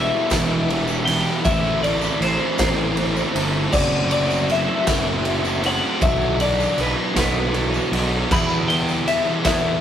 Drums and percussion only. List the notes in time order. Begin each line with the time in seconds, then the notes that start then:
0.30 kick, snare, ride, tambourine
0.70 ride
0.88 tambourine
1.07 ride
1.45 kick, ride, tambourine
1.64 tambourine
1.84 ride
2.01 tambourine
2.22 ride
2.58 kick, snare, ride, tambourine
2.97 ride
3.17 tambourine
3.36 ride
3.73 kick, crash, tambourine
3.92 tambourine
4.11 ride
4.30 tambourine
4.50 ride
4.87 kick, snare, ride, tambourine
5.25 ride
5.45 tambourine
5.64 ride
6.01 kick, ride, tambourine
6.21 tambourine
6.40 ride, tambourine
6.60 tambourine
6.78 ride, tambourine
7.16 kick, snare, ride, tambourine
7.36 tambourine
7.54 ride
7.74 tambourine
7.93 ride
8.31 kick, tambourine, crash
8.50 tambourine
8.70 ride
8.89 tambourine
9.08 ride
9.45 kick, snare, ride, tambourine